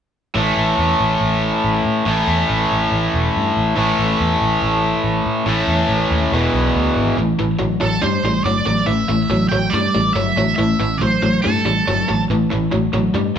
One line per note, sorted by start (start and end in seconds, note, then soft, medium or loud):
0.35 0.50 A1 medium
0.35 2.05 A2 medium
0.35 2.06 E3 medium
0.35 2.07 A3 medium
0.57 0.72 A1 medium
0.78 0.93 E2 medium
1.00 1.15 A1 medium
1.21 1.51 A1 medium
1.64 1.79 A1 medium
1.85 2.00 A2 medium
2.05 2.21 A1 medium
2.05 3.75 A2 medium
2.05 3.77 E3 medium
2.05 3.78 A3 medium
2.27 2.42 E2 medium
2.50 2.64 A1 medium
2.71 2.86 A1 medium
2.92 3.07 A1 medium
3.14 3.28 E1 medium
3.36 3.51 G2 medium
3.57 3.71 A1 medium
3.76 3.92 A1 medium
3.76 5.45 A2 medium
3.76 5.47 E3 medium
3.76 5.47 A3 medium
3.99 4.14 A1 medium
4.20 4.35 E2 medium
4.42 4.56 A1 medium
4.63 4.92 A1 medium
5.04 5.19 A1 medium
5.26 5.41 A2 medium
5.46 5.62 A1 medium
5.46 6.31 A2 medium
5.46 6.32 E3 medium
5.46 6.32 A3 medium
5.68 5.83 E2 medium
5.89 6.04 A1 medium
6.11 6.26 D#2 medium
6.32 6.47 E1 medium
6.32 7.17 E2 medium
6.32 7.17 B2 medium
6.32 7.17 E3 medium
6.54 6.69 B1 medium
6.75 6.90 D2 medium
6.96 7.11 G#1 medium
7.17 7.33 A1 medium
7.17 7.37 A2 medium
7.17 7.37 E3 medium
7.39 7.55 A1 medium
7.39 7.57 A2 medium
7.39 7.58 E3 medium
7.59 7.76 A1 medium
7.59 7.79 A2 medium
7.59 7.79 F#3 medium
7.80 7.97 A1 medium
7.80 8.00 A2 medium
7.80 8.01 F#3 medium
7.80 8.01 A4 medium
8.02 8.18 G2 medium
8.02 8.22 A2 medium
8.02 8.22 G3 medium
8.02 8.44 C5 medium
8.24 8.39 A1 medium
8.24 8.44 A2 medium
8.24 8.44 G3 medium
8.44 8.60 G1 medium
8.44 8.65 A2 medium
8.44 8.65 F#3 medium
8.44 8.85 D5 medium
8.66 8.82 A1 medium
8.66 8.86 A2 medium
8.66 8.86 F#3 medium
8.86 9.02 A1 medium
8.86 9.07 A2 medium
8.86 9.07 E3 medium
8.86 9.47 E5 medium
9.09 9.24 A1 medium
9.09 9.28 A2 medium
9.09 9.28 E3 medium
9.30 9.45 A1 medium
9.30 9.50 A2 medium
9.30 9.50 F#3 medium
9.48 9.67 A1 medium
9.48 9.71 A2 medium
9.48 9.71 F#3 medium
9.48 9.72 G5 medium
9.70 9.88 G2 medium
9.70 9.93 A2 medium
9.70 10.16 D5 medium
9.74 9.93 G3 medium
9.95 10.10 A1 medium
9.95 10.14 A2 medium
9.95 10.14 G3 medium
10.13 10.30 G1 medium
10.13 10.35 A2 medium
10.13 10.35 F#3 medium
10.13 10.55 E5 medium
10.37 10.52 A1 medium
10.37 10.57 A2 medium
10.37 10.57 F#3 medium
10.56 10.74 A1 medium
10.56 10.78 A2 medium
10.56 10.78 E3 medium
10.56 11.01 E5 medium
10.80 10.95 A1 medium
10.80 10.99 A2 medium
10.80 10.99 E3 medium
10.98 11.16 A1 medium
10.98 11.21 A2 medium
10.98 11.20 F#3 medium
10.98 11.39 C5 medium
11.22 11.38 A1 medium
11.22 11.42 A2 medium
11.22 11.42 F#3 medium
11.42 11.63 A2 medium
11.42 11.63 G3 medium
11.42 12.24 A4 medium
11.46 11.60 G2 medium
11.65 11.80 A1 medium
11.65 11.84 A2 medium
11.65 11.85 G3 medium
11.88 12.02 G1 medium
11.88 12.06 A2 medium
11.88 12.06 F#3 medium
12.09 12.24 A1 medium
12.09 12.27 A2 medium
12.09 12.27 F#3 medium
12.30 12.44 A1 medium
12.30 12.49 A2 medium
12.30 12.49 E3 medium
12.52 12.67 A1 medium
12.52 12.70 A2 medium
12.52 12.70 E3 medium
12.72 12.88 A1 medium
12.72 12.91 A2 medium
12.72 12.91 F#3 medium
12.93 13.08 A1 medium
12.93 13.12 A2 medium
12.93 13.12 F#3 medium
13.14 13.29 G2 medium
13.14 13.33 A2 medium
13.14 13.33 G3 medium